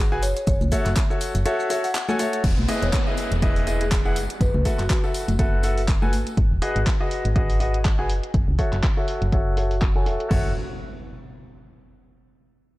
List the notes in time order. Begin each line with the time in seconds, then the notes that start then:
Already playing: G#1
0.12 F#4 G#4 B4 G#5
0.22 F#1 C#5, open hi-hat, tambourine, shaker
0.36 C#5, closed hi-hat, tambourine, shaker
0.47 F#1 C#5, kick, closed hi-hat, tambourine, shaker
0.61 C#2, high conga, shaker
0.72 F#4 A4 C#5 E5, kick, open hi-hat, tambourine, shaker
0.86 F#1, clap, closed hi-hat, tambourine, shaker
0.96 kick, clap, closed hi-hat, tambourine, shaker
1.10 F#4 A4 C#5 E5, shaker
1.21 open hi-hat, tambourine, shaker
1.35 F#1, closed hi-hat, tambourine, shaker
1.46 F#4 A4 C#5 E5, closed hi-hat, tambourine, shaker
1.60 shaker
1.70 F#4 A4 C#5 E5, open hi-hat, tambourine, shaker
1.84 F#5, open hi-hat, tambourine, shaker
1.95 clap, closed hi-hat, tambourine, shaker
2.08 F#4 A4 C#5 G#5, tambourine, high conga, shaker
2.19 F#4 A4 C#5 E5, open hi-hat, tambourine, shaker
2.33 closed hi-hat, tambourine, shaker
2.44 E1, kick, closed hi-hat, crash, tambourine, downlifter
2.58 B1, high conga
2.69 E4 G#4 B4 D#5, open hi-hat, tambourine
2.82 E1 C#5, closed hi-hat, tambourine
2.93 kick, clap, closed hi-hat, tambourine
3.07 E4 G#4 B4 D#5, tambourine
3.17 open hi-hat, tambourine
3.31 E1, closed hi-hat, tambourine
3.42 E4 G#4 B4 D#5, kick, closed hi-hat, tambourine
3.56 open hi-hat
3.67 E4 G#4 B4 D#5, open hi-hat, tambourine
3.80 G#4, closed hi-hat, tambourine
3.91 kick, clap, closed hi-hat, tambourine
4.05 E4 G#4 B4 F#5, tambourine
4.16 F#1, open hi-hat, tambourine
4.30 closed hi-hat, tambourine
4.41 F#1 B4, kick, closed hi-hat, tambourine
4.54 C#2 B4, high conga
4.65 F#4 A4 B4 E5, kick, open hi-hat, tambourine
4.79 F#1 F#4, clap, closed hi-hat, tambourine
4.90 kick, clap, closed hi-hat, tambourine
5.04 F#4 A4 B4 E5, tambourine
5.14 open hi-hat, tambourine
5.28 F#1, closed hi-hat, tambourine, high conga
5.39 F#4 A4 B4 E5, kick, closed hi-hat, tambourine
5.63 F#4 A4 B4 E5, open hi-hat, tambourine
5.78 open hi-hat, tambourine
5.88 kick, clap, closed hi-hat, tambourine
6.02 F#4 A4 B4 G#5, tambourine, high conga
6.13 G#1, open hi-hat, tambourine
6.27 closed hi-hat, tambourine
6.37 G#1, kick, closed hi-hat
6.51 D#1
6.62 F#4 G#4 B4 D#5, open hi-hat
6.76 G#1, closed hi-hat
6.87 kick, clap, closed hi-hat
7.00 F#4 G#4 B4 D#5
7.11 open hi-hat
7.25 G#1, closed hi-hat
7.36 F#4 G#4 B4 D#5, kick, closed hi-hat
7.50 open hi-hat
7.60 F#4 G#4 B4 D#5, open hi-hat
7.74 closed hi-hat
7.85 kick, clap, closed hi-hat
7.99 F#4 G#4 B4 G#5
8.10 F#1, open hi-hat
8.23 closed hi-hat
8.34 F#1, kick, closed hi-hat
8.48 C#2
8.59 F#4 A4 C#5 E5, kick, open hi-hat
8.73 F#1, clap, closed hi-hat
8.83 kick, clap, closed hi-hat
8.97 F#4 A4 C#5 E5
9.08 open hi-hat
9.22 F#1, closed hi-hat
9.32 F#4 A4 C#5 E5, kick, closed hi-hat
9.57 F#4 A4 C#5 E5, open hi-hat
9.71 open hi-hat
9.82 kick, clap, closed hi-hat
9.96 F#4 A4 C#5 G#5
10.06 E1 F#4 A4 C#5 E5, open hi-hat
10.20 closed hi-hat
10.31 F#1 F#4 A4 C#5 E5, kick, crash, impact